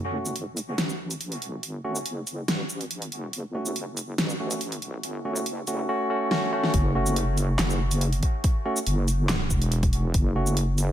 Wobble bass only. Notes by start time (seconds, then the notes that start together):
Already playing: F#1
0.78 A1
1.63 G1
2.06 F#1
2.48 A1
3.33 F#1
4.19 A1
5.04 G1
5.46 F#1
6.74 F#1
7.59 F#1
8.87 F#1
9.51 E1
10.14 F#1